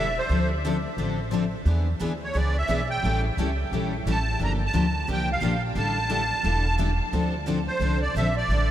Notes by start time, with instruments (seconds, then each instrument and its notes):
Already playing: upright bass E1, accordion E5
0.19 accordion C5
0.29 upright bass D2, steel-string acoustic guitar D3 F3 C4 D4 A4
0.65 steel-string acoustic guitar D3 F3 C4 D4 A4
0.97 upright bass A1, steel-string acoustic guitar D3 F3 C4 D4 A4
1.32 steel-string acoustic guitar D3 F3 C4 D4 A4
1.65 upright bass E2, steel-string acoustic guitar E3 B3 D4 G#4 B4
1.99 upright bass D2, steel-string acoustic guitar E3 B3 D4 G#4 B4
2.24 accordion C#5
2.33 upright bass C#2, steel-string acoustic guitar E3 B3 D4 G#4 B4, accordion D5
2.58 accordion E5
2.69 upright bass B1, steel-string acoustic guitar E3 B3 D4 G#4 B4
2.90 accordion G5
3.03 upright bass A1, steel-string acoustic guitar E3 G3 C#4 E4 A4
3.37 upright bass C#2, steel-string acoustic guitar E3 G3 C#4 E4 A4
3.71 upright bass A#1, steel-string acoustic guitar E3 G3 C#4 E4 A4
4.05 upright bass A1, steel-string acoustic guitar E3 G3 C#4 E4 A4
4.11 accordion A5
4.40 upright bass G1, steel-string acoustic guitar D3 F3 A#3 D4 G4
4.44 accordion A#5
4.66 accordion A5
4.74 upright bass D2, steel-string acoustic guitar D3 F3 A#3 D4 G4
5.07 upright bass C2, steel-string acoustic guitar D3 F3 A#3 D4 G4
5.12 accordion G5
5.32 accordion F5
5.41 upright bass A#1, steel-string acoustic guitar D3 F3 A#3 D4 G4
5.75 upright bass A1, steel-string acoustic guitar D3 G3 D4 E4 A4, accordion A5
6.10 steel-string acoustic guitar D3 G3 D4 E4 A4
6.43 upright bass E1, steel-string acoustic guitar D3 G3 D4 E4 A4
6.78 steel-string acoustic guitar D3 G3 D4 E4 A4
7.12 upright bass D2, steel-string acoustic guitar D3 F3 C4 D4 A4
7.46 steel-string acoustic guitar D3 F3 C4 D4 A4
7.67 accordion C5
7.80 upright bass C2, steel-string acoustic guitar D3 F3 C4 D4 A4
8.02 accordion D5
8.15 upright bass A#1, steel-string acoustic guitar D3 F3 C4 D4 A4, accordion E5
8.37 accordion D5
8.49 upright bass A1, steel-string acoustic guitar D3 G3 D4 E4 A4